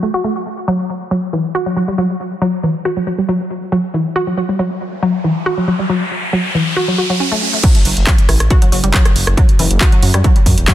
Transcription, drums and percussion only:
7.63 kick loud
7.63 closed hi-hat medium
7.63 crash loud
7.75 closed hi-hat medium
7.85 open hi-hat loud
7.97 closed hi-hat medium
8.07 kick loud
8.07 clap loud
8.07 closed hi-hat medium
8.18 closed hi-hat medium
8.29 cross-stick medium
8.29 open hi-hat loud
8.40 cross-stick medium
8.40 closed hi-hat medium
8.50 kick loud
8.50 closed hi-hat medium
8.62 closed hi-hat medium
8.72 open hi-hat loud
8.84 closed hi-hat medium
8.94 kick loud
8.94 clap loud
8.94 closed hi-hat medium
9.05 cross-stick medium
9.05 closed hi-hat medium
9.16 open hi-hat loud
9.27 cross-stick medium
9.27 closed hi-hat medium
9.37 kick loud
9.37 closed hi-hat medium
9.49 closed hi-hat medium
9.59 open hi-hat loud
9.71 closed hi-hat medium
9.81 kick loud
9.81 clap loud
9.81 closed hi-hat medium
9.92 closed hi-hat medium
10.03 open hi-hat loud
10.14 cross-stick medium
10.14 closed hi-hat medium
10.24 kick loud
10.24 closed hi-hat medium
10.36 closed hi-hat medium
10.46 kick medium
10.46 open hi-hat loud
10.58 closed hi-hat medium
10.68 kick loud
10.68 clap loud
10.68 closed hi-hat medium

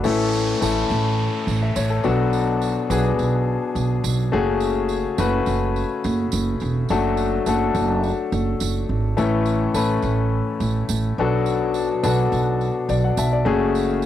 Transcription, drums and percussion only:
0.04 tambourine medium
0.33 tambourine soft
0.62 tambourine medium
0.90 tambourine soft
1.48 tambourine medium
1.76 tambourine loud
2.04 tambourine soft
2.33 tambourine medium
2.62 tambourine soft
2.91 tambourine medium
3.19 tambourine soft
3.76 tambourine medium
4.04 tambourine loud
4.60 tambourine medium
4.89 tambourine medium
5.18 tambourine medium
5.46 tambourine soft
5.76 tambourine soft
6.04 tambourine medium
6.32 tambourine loud
6.60 tambourine soft
6.89 tambourine medium
7.17 tambourine medium
7.46 tambourine medium
7.75 tambourine soft
8.03 tambourine soft
8.32 tambourine soft
8.60 tambourine medium
9.18 tambourine medium
9.46 tambourine soft
9.75 tambourine medium
10.02 tambourine soft
10.60 tambourine soft
10.89 tambourine loud
11.46 tambourine medium
11.74 tambourine medium
12.04 tambourine medium
12.33 tambourine soft
12.61 tambourine soft
12.89 tambourine medium
13.17 tambourine loud
13.75 tambourine medium
14.02 tambourine medium

